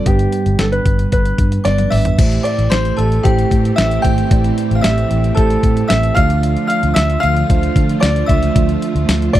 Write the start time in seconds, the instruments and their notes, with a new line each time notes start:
0.05 fingered electric bass G1, tine electric piano G2 G3 B3 D4 B4, grand piano G4, kick, closed hi-hat
0.19 closed hi-hat
0.32 closed hi-hat
0.46 fingered electric bass G1, closed hi-hat
0.59 fingered electric bass G1, grand piano A4, snare, closed hi-hat
0.72 grand piano B4, closed hi-hat
0.86 fingered electric bass G1, kick, closed hi-hat
0.99 closed hi-hat
1.12 fingered electric bass G1, grand piano B4, kick, closed hi-hat
1.25 closed hi-hat
1.38 fingered electric bass G2, kick, closed hi-hat
1.52 closed hi-hat
1.64 fingered electric bass G1, tine electric piano G3 B3 D4 B4, grand piano D5, synth bell D6, snare, closed hi-hat
1.78 closed hi-hat, high tom
1.90 fingered electric bass G#1, grand piano E5, synth bell E6, mid tom, open hi-hat
2.05 closed hi-hat, floor tom
2.18 fingered electric bass A1, tine electric piano A2 A3 E4 G4 C5, string machine E3 A3 C4 G4, kick, closed hi-hat, crash
2.32 closed hi-hat
2.43 grand piano D5, synth bell D6, closed hi-hat
2.58 fingered electric bass A1, closed hi-hat
2.70 fingered electric bass A1, grand piano C5, synth bell C6, snare, closed hi-hat
2.85 closed hi-hat
2.97 fingered electric bass A1, grand piano A4, synth bell A5, closed hi-hat
3.12 closed hi-hat
3.23 fingered electric bass A1, tine electric piano A3 E4 G4 C5, grand piano G4, synth bell G5, kick, closed hi-hat
3.39 closed hi-hat
3.51 fingered electric bass A2, kick, closed hi-hat
3.65 closed hi-hat
3.76 fingered electric bass A1, grand piano E5, synth bell E6, snare, closed hi-hat
3.91 closed hi-hat
4.02 fingered electric bass G#1, tine electric piano A3 E4 G4 C5, grand piano G5, synth bell G6, kick, closed hi-hat
4.18 closed hi-hat
4.31 fingered electric bass A1, tine electric piano A2 A3 E4 G4 D5, kick, closed hi-hat
4.44 closed hi-hat
4.58 closed hi-hat
4.71 fingered electric bass A1, closed hi-hat
4.75 grand piano F5, synth bell F6
4.81 fingered electric bass A1, grand piano E5, synth bell E6, snare, closed hi-hat, tambourine
4.98 closed hi-hat
5.11 fingered electric bass A1, closed hi-hat
5.24 closed hi-hat
5.35 fingered electric bass A1, tine electric piano A3 E4 G4 C5, grand piano A4, synth bell A5, kick, closed hi-hat
5.50 closed hi-hat
5.63 fingered electric bass A2, kick, closed hi-hat
5.77 closed hi-hat
5.88 fingered electric bass A1, grand piano E5, synth bell E6, snare, closed hi-hat, tambourine
6.03 closed hi-hat
6.15 fingered electric bass D2, string machine D3 F3 A3 F4, tine electric piano D3 A3 D4 F4 D5, grand piano F5, synth bell F6, kick, closed hi-hat
6.30 closed hi-hat
6.43 closed hi-hat
6.57 closed hi-hat
6.67 grand piano F5, synth bell F6, closed hi-hat
6.83 fingered electric bass D2, closed hi-hat
6.94 fingered electric bass D2, grand piano E5, synth bell E6, snare, closed hi-hat, tambourine
7.10 closed hi-hat
7.20 fingered electric bass D2, grand piano F5, synth bell F6, closed hi-hat
7.37 closed hi-hat
7.49 fingered electric bass D2, tine electric piano A3 D4 F4 C5, kick, closed hi-hat
7.63 closed hi-hat
7.76 fingered electric bass D3, kick, closed hi-hat
7.89 closed hi-hat
8.00 fingered electric bass D2, grand piano D5, synth bell D6, snare, closed hi-hat, tambourine
8.16 closed hi-hat
8.26 fingered electric bass C#2, tine electric piano D3 A3 D4 F4 D5, grand piano E5, synth bell E6, kick, closed hi-hat
8.43 closed hi-hat
8.56 fingered electric bass D2, tine electric piano A3 D4 F4 E5, kick, closed hi-hat
8.69 closed hi-hat
8.82 closed hi-hat
8.95 fingered electric bass D2, closed hi-hat
9.08 fingered electric bass D2, snare, closed hi-hat, tambourine
9.22 closed hi-hat
9.33 fingered electric bass D2, grand piano D5, synth bell D6, kick, closed hi-hat